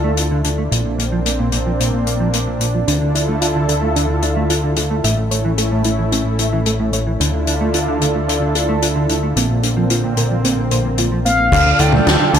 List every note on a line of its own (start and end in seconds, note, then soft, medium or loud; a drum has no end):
0.00 0.69 D2 medium
0.00 0.69 D3 medium
0.00 0.11 A3 medium
0.00 5.00 D4 medium
0.00 0.67 E4 medium
0.00 0.69 F4 medium
0.00 0.69 A4 medium
0.17 0.21 D4 medium
0.17 closed hi-hat medium
0.31 0.41 D3 medium
0.44 0.49 D3 medium
0.44 closed hi-hat medium
0.58 0.62 A3 medium
0.71 2.85 A#1 medium
0.71 0.82 A#2 medium
0.71 2.85 A#3 medium
0.71 2.85 C4 medium
0.71 closed hi-hat medium
0.85 0.95 A#2 medium
0.98 1.05 A#3 medium
0.98 closed hi-hat medium
1.12 1.19 F3 medium
1.26 1.30 A#3 medium
1.26 closed hi-hat medium
1.39 1.49 A#2 medium
1.52 1.57 A#2 medium
1.52 closed hi-hat medium
1.66 1.70 F3 medium
1.80 1.90 A#2 medium
1.80 closed hi-hat medium
1.93 2.03 A#2 medium
2.07 2.13 A#3 medium
2.07 closed hi-hat medium
2.20 2.27 F3 medium
2.33 2.38 A#3 medium
2.33 closed hi-hat medium
2.47 2.57 A#2 medium
2.61 2.65 A#2 medium
2.61 closed hi-hat medium
2.74 2.78 F3 medium
2.87 5.01 D2 medium
2.87 5.02 D3 medium
2.87 2.98 D3 medium
2.87 2.99 D4 medium
2.87 5.02 E4 medium
2.87 5.02 F4 medium
2.87 5.02 A4 medium
2.87 closed hi-hat medium
3.01 3.11 D3 medium
3.15 3.22 D4 medium
3.15 3.34 E4 medium
3.15 closed hi-hat medium
3.28 3.35 A3 medium
3.42 3.46 D4 medium
3.42 3.67 F4 medium
3.42 closed hi-hat medium
3.55 3.65 D3 medium
3.69 3.73 D3 medium
3.69 3.88 A4 medium
3.69 closed hi-hat medium
3.82 3.86 A3 medium
3.96 4.06 D3 medium
3.96 4.07 D4 medium
3.96 closed hi-hat medium
4.09 4.19 D3 medium
4.22 4.30 D4 medium
4.22 4.34 E4 medium
4.22 closed hi-hat medium
4.36 4.43 A3 medium
4.50 4.54 D4 medium
4.50 4.76 F4 medium
4.50 closed hi-hat medium
4.63 4.74 D3 medium
4.76 4.81 D3 medium
4.76 4.96 A4 medium
4.76 closed hi-hat medium
4.90 4.94 A3 medium
5.04 7.17 A1 medium
5.04 5.14 A2 medium
5.04 7.18 A3 medium
5.04 7.18 C#4 medium
5.04 7.18 E4 medium
5.04 5.15 E5 medium
5.04 closed hi-hat medium
5.17 5.28 A2 medium
5.31 5.38 A3 medium
5.31 5.50 C#5 medium
5.31 closed hi-hat medium
5.45 5.51 E3 medium
5.58 5.62 A3 medium
5.58 5.77 A4 medium
5.58 closed hi-hat medium
5.71 5.82 A2 medium
5.84 5.89 A2 medium
5.84 5.96 E4 medium
5.84 closed hi-hat medium
5.99 6.03 E3 medium
6.12 6.22 A2 medium
6.12 6.23 C#4 medium
6.12 closed hi-hat medium
6.26 6.36 A2 medium
6.39 6.46 A3 medium
6.39 6.58 E4 medium
6.39 closed hi-hat medium
6.53 6.59 E3 medium
6.66 6.70 A3 medium
6.66 6.92 A4 medium
6.66 closed hi-hat medium
6.80 6.90 A2 medium
6.93 6.97 A2 medium
6.93 7.12 C#5 medium
6.93 closed hi-hat medium
7.07 7.11 E3 medium
7.20 9.34 D2 medium
7.20 9.34 D3 medium
7.20 7.30 D3 medium
7.20 9.34 D4 medium
7.20 7.31 D4 medium
7.20 9.34 E4 medium
7.20 9.34 F4 medium
7.20 9.34 A4 medium
7.20 closed hi-hat medium
7.34 7.44 D3 medium
7.47 7.54 D4 medium
7.47 7.59 E4 medium
7.47 closed hi-hat medium
7.61 7.67 A3 medium
7.74 7.78 D4 medium
7.74 8.00 F4 medium
7.74 closed hi-hat medium
7.88 7.98 D3 medium
8.01 8.05 D3 medium
8.01 8.20 A4 medium
8.01 closed hi-hat medium
8.15 8.19 A3 medium
8.28 8.38 D3 medium
8.28 8.40 D5 medium
8.28 closed hi-hat medium
8.42 8.52 D3 medium
8.55 8.62 D4 medium
8.55 8.74 A4 medium
8.55 closed hi-hat medium
8.69 8.75 A3 medium
8.82 8.86 D4 medium
8.82 9.01 F4 medium
8.82 closed hi-hat medium
8.96 9.06 D3 medium
9.09 9.13 D3 medium
9.09 9.21 E4 medium
9.09 closed hi-hat medium
9.23 9.27 A3 medium
9.36 11.50 A#1 medium
9.36 9.46 A#2 medium
9.36 11.50 D3 medium
9.36 11.50 A#3 medium
9.36 11.50 C4 medium
9.36 9.48 C4 medium
9.36 closed hi-hat medium
9.50 9.60 A#2 medium
9.63 9.70 A#3 medium
9.63 9.82 D4 medium
9.63 closed hi-hat medium
9.77 9.84 F3 medium
9.90 9.94 A#3 medium
9.90 10.16 F4 medium
9.90 closed hi-hat medium
10.04 10.14 A#2 medium
10.17 10.21 A#2 medium
10.17 10.36 A#4 medium
10.17 closed hi-hat medium
10.31 10.35 F3 medium
10.44 10.54 A#2 medium
10.44 10.56 C4 medium
10.44 closed hi-hat medium
10.58 10.68 A#2 medium
10.71 10.78 A#2 medium
10.71 10.97 C5 medium
10.71 closed hi-hat medium
10.85 10.89 A#2 medium
10.98 11.05 A#2 medium
10.98 11.10 F4 medium
10.98 closed hi-hat medium
11.12 11.19 F3 medium
11.25 11.29 A#2 medium
11.25 11.51 C4 medium
11.25 11.81 F5 medium
11.25 closed hi-hat medium
11.39 11.49 A#2 medium
11.52 11.73 D2 loud
11.52 12.39 D3 medium
11.52 11.63 D3 loud
11.52 12.39 D4 medium
11.52 11.78 D4 medium
11.52 12.39 F4 medium
11.52 12.39 A4 medium
11.52 kick loud
11.52 closed hi-hat loud
11.52 crash loud
11.66 11.76 D3 medium
11.79 12.00 D2 medium
11.79 11.86 D4 medium
11.79 11.99 E4 medium
11.79 12.35 G5 loud
11.79 closed hi-hat medium
11.92 12.00 A3 loud
11.92 mid tom medium
12.07 12.17 D2 medium
12.07 12.11 D4 medium
12.07 12.26 F4 medium
12.07 snare loud
12.07 closed hi-hat loud
12.20 12.30 D3 loud
12.33 12.39 D2 medium
12.33 12.38 D3 loud
12.33 12.39 A4 medium
12.33 12.39 A5 medium
12.33 closed hi-hat medium